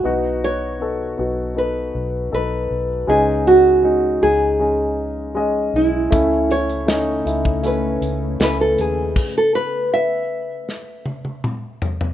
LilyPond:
<<
  \new Staff \with { instrumentName = "Nylon-string guitar" } { \time 4/4 \key a \lydian \tempo 4 = 79 fis'8 cis''4. b'4 b'4 | gis'8 fis'4 gis'2 e'8~ | e'8 cis''4 r8 b'4 b'16 a'16 gis'8~ | gis'16 a'16 b'8 e''2~ e''8 r8 | }
  \new Staff \with { instrumentName = "Grand piano" } { \time 4/4 \key a \lydian <b dis' fis'>4 <b dis' a'>8 <b dis' fis'>8 <b dis' a'>4 <b dis' a'>4 | <gis cis' dis'>4 <gis cis' dis'>8 <gis cis' dis'>8 <gis cis' dis'>4 <gis cis' dis''>4 | <a cis' e'>4 <a cis' dis'>8 <a cis' e'>8 <a cis' e'>4 <a cis' e'>4 | r1 | }
  \new Staff \with { instrumentName = "Grand piano" } { \clef bass \time 4/4 \key a \lydian b,4. r2 r8 | cis4. r2 r8 | cis4. r2 r8 | r1 | }
  \new Staff \with { instrumentName = "Ambient pad" } { \time 4/4 \key a \lydian r1 | r1 | <cis a cis'>1 | r1 | }
  \new Staff \with { instrumentName = "Fingered electric bass" } { \clef bass \time 4/4 \key a \lydian b,,4. b,,4 b,,8 b,,8 b,,8 | cis,4. cis,2 b,,8 | cis,4. cis,4 cis,8 cis,8 dis,8 | r1 | }
  \new DrumStaff \with { instrumentName = "Drums" } \drummode { \time 4/4 r4 r4 r4 r4 | r4 r4 r4 r4 | <hh bd>8 hh16 hh16 <hh sn>8 hh16 bd16 hh8 hh8 <hh sn>8 hh8 | <cymc bd>4 r4 sn8 tommh16 tommh16 toml8 tomfh16 tomfh16 | }
>>